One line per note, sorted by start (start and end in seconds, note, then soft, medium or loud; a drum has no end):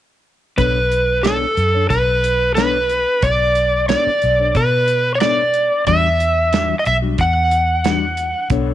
0.57 1.44 B1 medium
0.57 0.78 B3 medium
0.57 0.78 D4 medium
0.57 0.78 A4 medium
0.57 1.26 B4 medium
0.57 0.79 C#5 medium
0.57 kick loud
0.57 closed hi-hat medium
0.92 closed hi-hat medium
1.23 1.44 B3 medium
1.23 1.45 D4 medium
1.23 1.90 A4 medium
1.23 1.45 A4 medium
1.23 1.45 C#5 medium
1.23 snare loud
1.23 closed hi-hat medium
1.57 1.86 F#2 medium
1.57 closed hi-hat medium
1.74 1.95 D4 soft
1.74 1.94 A4 soft
1.74 1.94 C#5 soft
1.90 3.04 B1 loud
1.90 2.52 B4 medium
1.90 kick medium
1.90 closed hi-hat medium
2.24 closed hi-hat medium
2.55 2.76 B3 medium
2.55 2.77 D4 medium
2.55 2.77 A4 medium
2.55 3.24 B4 medium
2.55 2.77 C#5 medium
2.55 snare loud
2.55 closed hi-hat medium
2.90 closed hi-hat medium
3.22 3.94 B1 medium
3.22 3.85 D5 medium
3.22 kick loud
3.22 closed hi-hat medium
3.55 closed hi-hat medium
3.88 4.09 B3 medium
3.88 4.09 D4 medium
3.88 4.09 A4 medium
3.88 4.09 C#5 medium
3.88 4.57 D5 medium
3.88 snare medium
3.88 closed hi-hat medium
4.07 muted fingered electric bass stroke soft
4.22 4.51 B1 medium
4.22 closed hi-hat soft
4.39 4.59 D4 soft
4.39 4.58 A4 soft
4.39 4.58 C#5 medium
4.55 5.69 B2 medium
4.55 5.15 B4 medium
4.55 kick medium
4.55 closed hi-hat medium
4.88 closed hi-hat medium
5.15 5.21 C#5 medium
5.20 5.41 B3 medium
5.20 5.41 D4 medium
5.20 5.41 A4 medium
5.20 5.41 C#5 medium
5.20 5.87 D5 medium
5.20 snare loud
5.20 closed hi-hat medium
5.54 closed hi-hat soft
5.87 6.72 E2 medium
5.87 6.07 E3 medium
5.87 6.07 G3 medium
5.87 6.07 D4 medium
5.87 6.07 F#4 medium
5.87 6.79 E5 loud
5.87 kick loud
5.87 closed hi-hat medium
6.20 closed hi-hat medium
6.53 6.73 E3 medium
6.53 6.73 G3 medium
6.53 6.73 D4 medium
6.53 6.73 F#4 medium
6.53 snare loud
6.53 closed hi-hat medium
6.79 6.86 D#5 medium
6.85 7.15 B1 medium
6.85 6.96 E5 medium
6.85 closed hi-hat soft
7.02 7.23 G3 soft
7.02 7.22 D4 soft
7.02 7.22 F#4 medium
7.18 8.32 E2 medium
7.18 8.48 F#5 loud
7.18 kick medium
7.18 closed hi-hat medium
7.51 closed hi-hat medium
7.84 8.05 E3 medium
7.84 8.05 G3 medium
7.84 8.05 D4 medium
7.84 8.05 F#4 medium
7.84 snare loud
7.84 closed hi-hat medium
8.17 closed hi-hat medium
8.50 8.74 B1 medium
8.50 8.71 B3 medium
8.50 8.71 D4 medium
8.50 8.71 A4 medium
8.50 8.71 C#5 medium
8.50 kick loud
8.50 closed hi-hat medium